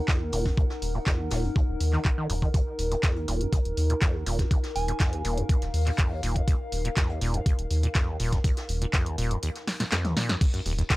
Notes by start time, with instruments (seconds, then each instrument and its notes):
Already playing: ambient pad D#4 A#4 F#5
0.08 acid bass F2, kick, snare, clap, closed hi-hat
0.21 acid bass D#2
0.32 analog synth bass D#1, acid bass A#2, closed hi-hat, open hi-hat
0.45 acid bass F2, kick, snare
0.57 acid bass D#2, kick, closed hi-hat
0.70 snare
0.82 analog synth bass D#1, closed hi-hat, open hi-hat
0.95 acid bass A#2
1.06 acid bass F2, kick, snare, clap, closed hi-hat
1.19 acid bass D#2
1.30 analog synth bass D#1, acid bass A#2, snare, closed hi-hat, open hi-hat
1.44 acid bass F2, closed hi-hat
1.56 acid bass D#2, kick, closed hi-hat
1.68 analog synth bass D#1
1.80 analog synth bass D#2, closed hi-hat, open hi-hat
1.93 acid bass D#3, clap
2.05 acid bass D#2, kick, clap, closed hi-hat
2.18 acid bass D#3
2.29 analog synth bass D#1, acid bass F#2, closed hi-hat, open hi-hat
2.42 acid bass D#3, kick, closed hi-hat
2.54 acid bass D#2, kick, closed hi-hat
2.79 analog synth bass D#1, closed hi-hat, open hi-hat
2.92 acid bass A#2, closed hi-hat
3.03 acid bass F2, kick, snare, clap, closed hi-hat
3.16 acid bass D#2, closed hi-hat
3.28 analog synth bass D#1, acid bass A#2, closed hi-hat, open hi-hat
3.41 acid bass F2, closed hi-hat
3.52 acid bass D#2, kick, closed hi-hat
3.65 analog synth bass D#1, closed hi-hat
3.77 analog synth bass D#2, closed hi-hat, open hi-hat
3.90 acid bass A#2, closed hi-hat
4.02 acid bass F2, kick, snare, clap, closed hi-hat
4.15 acid bass D#2
4.26 analog synth bass D#1, acid bass A#2, closed hi-hat, open hi-hat
4.39 acid bass F2, kick, snare, closed hi-hat
4.48 acid bass D#2, ambient pad F5, kick, closed hi-hat
4.63 snare, closed hi-hat
4.76 analog synth bass D#1, synth bell G#5, closed hi-hat, open hi-hat
4.88 acid bass A#2, closed hi-hat
5.00 acid bass F2, kick, snare, clap, closed hi-hat
5.13 acid bass D#2, closed hi-hat
5.25 analog synth bass D#1, acid bass A#2, closed hi-hat, open hi-hat
5.37 acid bass F2, closed hi-hat
5.49 acid bass D#2, kick, closed hi-hat
5.62 analog synth bass D#1, snare, closed hi-hat
5.74 analog synth bass D#2, open hi-hat
5.86 acid bass A#2, clap, closed hi-hat
5.98 acid bass F2, kick, clap, closed hi-hat
6.11 acid bass D#2
6.23 analog synth bass D#1, acid bass A#2, closed hi-hat, open hi-hat
6.36 acid bass F2, kick, closed hi-hat
6.48 acid bass D#2, kick, closed hi-hat
6.72 analog synth bass D#1, closed hi-hat, open hi-hat
6.85 acid bass A#2, closed hi-hat
6.96 acid bass F2, kick, snare, clap, closed hi-hat
7.09 acid bass D#2, closed hi-hat
7.21 analog synth bass D#1, acid bass A#2, closed hi-hat, open hi-hat
7.34 acid bass F2, closed hi-hat
7.46 acid bass D#2, kick, closed hi-hat
7.59 analog synth bass D#1, closed hi-hat
7.71 analog synth bass D#2, closed hi-hat, open hi-hat
7.83 acid bass A#2, closed hi-hat
7.95 acid bass F2, kick, snare, clap, closed hi-hat
8.08 acid bass D#2
8.20 analog synth bass D#1, acid bass A#2, closed hi-hat, open hi-hat
8.32 acid bass F2, kick, snare, closed hi-hat
8.44 acid bass D#2, kick, closed hi-hat
8.57 snare, closed hi-hat
8.69 analog synth bass D#1, closed hi-hat, open hi-hat
8.82 acid bass A#2, closed hi-hat
8.93 acid bass F2, kick, snare, clap, closed hi-hat
9.06 acid bass D#2, closed hi-hat
9.18 analog synth bass D#1, acid bass A#2, closed hi-hat, open hi-hat
9.31 acid bass F2, closed hi-hat
9.42 acid bass D#2, closed hi-hat
9.55 snare, closed hi-hat
9.67 snare, open hi-hat
9.80 acid bass A#2, snare, closed hi-hat
9.92 acid bass F2, snare, clap, closed hi-hat
10.05 acid bass D#2, snare, closed hi-hat, mid tom
10.17 acid bass A#2, snare, closed hi-hat, open hi-hat
10.29 acid bass F2, snare, closed hi-hat
10.41 acid bass D#2, kick, closed hi-hat, crash
10.54 acid bass F#2, closed hi-hat
10.65 analog synth bass D#1, acid bass D#2, closed hi-hat, open hi-hat
10.78 acid bass D#2, closed hi-hat
10.90 acid bass F#2, kick, snare, clap, closed hi-hat